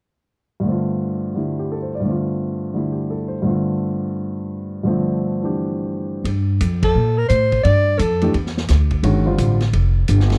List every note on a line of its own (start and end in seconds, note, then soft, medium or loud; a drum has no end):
0.60 1.99 G2 soft
0.60 1.33 D3 soft
0.65 1.35 A3 soft
0.65 2.07 C4 soft
0.71 2.08 F4 soft
1.34 2.01 D3 soft
1.34 2.06 G3 soft
1.34 2.04 A3 soft
1.34 2.07 E4 soft
1.59 1.77 G4 soft
1.72 1.92 A4 soft
1.83 2.00 C5 soft
1.95 2.12 D5 soft
2.00 3.41 G2 soft
2.00 2.72 D3 soft
2.05 2.74 A3 soft
2.05 3.45 C4 soft
2.11 3.46 F4 soft
2.74 3.42 D3 soft
2.74 3.45 G3 soft
2.74 3.43 A3 soft
2.74 3.46 E4 soft
2.92 3.17 G4 soft
3.11 3.37 A4 soft
3.28 3.53 C5 soft
3.42 4.82 G2 soft
3.42 4.83 D3 soft
3.42 4.85 A3 soft
3.42 4.85 C4 soft
3.48 4.87 F4 soft
4.83 6.24 G2 soft
4.83 6.25 D3 soft
4.83 6.25 A3 soft
4.83 5.42 C4 soft
4.88 6.27 F3 medium
5.42 6.25 E3 soft
5.42 6.26 C4 soft
5.42 6.26 D4 soft
5.42 6.26 G4 soft
6.24 6.59 G2 medium
6.24 ride medium
6.61 6.94 F2 medium
6.61 hi-hat pedal medium
6.61 ride medium
6.83 7.20 A4 medium
6.83 kick medium
6.83 ride medium
6.95 7.29 A#2 medium
7.18 7.28 A#4 medium
7.29 7.64 A2 medium
7.29 7.62 C5 medium
7.29 hi-hat pedal medium
7.29 ride medium
7.52 kick soft
7.52 ride soft
7.63 7.98 G2 medium
7.63 8.00 D5 medium
7.63 ride medium
7.99 8.33 F2 medium
7.99 8.34 A4 medium
7.99 hi-hat pedal medium
7.99 ride medium
8.21 8.33 E3 medium
8.21 8.33 A3 medium
8.21 8.33 D4 medium
8.21 8.34 G4 medium
8.21 ride soft
8.34 8.68 E2 medium
8.34 ride soft
8.46 snare soft
8.57 snare soft
8.68 9.02 D2 medium
8.68 snare soft
8.68 hi-hat pedal medium
8.68 ride medium
8.91 kick soft
8.91 ride soft
9.03 9.37 G1 medium
9.03 9.24 D#3 medium
9.03 9.24 G#3 medium
9.03 9.24 C#4 medium
9.03 9.25 F#4 medium
9.03 ride medium
9.26 9.56 D3 medium
9.26 9.57 G3 soft
9.26 9.57 C4 soft
9.26 9.57 F4 medium
9.38 9.72 A1 medium
9.38 hi-hat pedal medium
9.38 ride medium
9.60 snare soft
9.60 ride soft
9.73 10.07 F1 medium
9.73 ride medium
10.08 10.38 G1 medium
10.08 hi-hat pedal medium
10.08 ride medium
10.20 snare soft
10.30 snare soft
10.30 ride soft